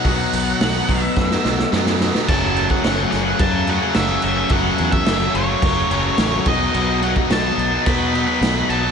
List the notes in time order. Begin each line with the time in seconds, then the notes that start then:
Already playing: F#5
0.04 B1 B2 D#3 F#3 B3 D#4 F#4, kick, open hi-hat
0.08 D#4
0.33 B1 D#3 F#3 B3 D#4, open hi-hat
0.48 F#3 B3 D#4
0.60 B1 B2 D#3, snare, open hi-hat
0.64 F#3 B3 D#4
0.89 B1 B2 F#3 B3, kick, open hi-hat
1.02 E5, muted distorted electric guitar stroke
1.16 F#2, kick, snare
1.31 F#3 B3 D#4, snare
1.45 B1 D#3 F#3 B3 D#4, snare
1.59 muted distorted electric guitar stroke, snare
1.72 F#2 B2 D#3 F#3 B3 D#4, snare
1.86 snare
1.99 D#3 F#3 B3 D#4, snare
2.14 F#3 B3 D#4, snare
2.28 F#1 F#2 C#3 F#3 A3 C#4 F#4 C#5 A5, kick, crash
2.56 C#3 F#3 A3 C#4, crash
2.70 F#3 A3 C#4 F#5, kick
2.84 F#1 F#2 C#3 F#3 A3 C#4, snare, crash
3.12 F#1 F#5, snare, crash
3.25 F#3 A3 C#4
3.39 F#2 C#3 F#3 A3 C#4 A5, kick, crash
3.54 F#3 A3 C#4
3.67 F#2 C#3 F#3 A3 C#4 F#5, crash
3.82 F#3 A3 C#4
3.94 F#1 F#2 C#3 F#3 A3 C#4 E5, snare, crash
4.22 F#1 C#3 F#3 A3 C#4 E5, crash
4.37 F#3 A3 C#4
4.49 F#1 F#2 C#3 F#3 A3 C#4 F#4 C#5 F#5, kick, crash
4.53 C#4 A4
4.78 E2 C#3 F#3 A3 C#4, crash
4.92 F#3 A3 C#4 E5, kick
5.06 F#1 F#2 C#3 F#3 A3 C#4, snare, crash
5.34 F#1 C#5, crash
5.49 F#3 A3 C#4
5.62 F#1 C#3 F#3 A3 C#4, kick, crash
5.77 F#3 A3 C#4
5.91 F#1 F#2 C#3 F#3 A3 C#4, crash
6.05 F#3 A3 C#4
6.18 A1 F#2 C#3 F#3 A3 C#4, snare, crash
6.46 B1 B2 F#3 B3 D#4 F#4 D#5, kick, crash
6.60 F#3 B3 D#4
6.74 B1 B2 F#3 B3 D#4, crash
7.02 B2 F#3 B3 D#4 F#5, crash
7.15 F#3 B3 D#4, kick
7.30 B1 B2 F#3 B3 D#4 A5, snare, crash
7.57 B1, crash
7.71 F#3 B3 D#4
7.85 B2 F#3 B3 D#4 B5, kick, crash
7.99 F#3 B3 D#4
8.13 B2 F#3 B3 D#4, crash
8.27 F#3 B3 D#4 B5
8.41 B1 B2 F#3 B3 D#4, snare, crash
8.69 B1 B2 F#3 B3 D#4 F#4 D#5 A5, crash
8.84 F#3 B3 D#4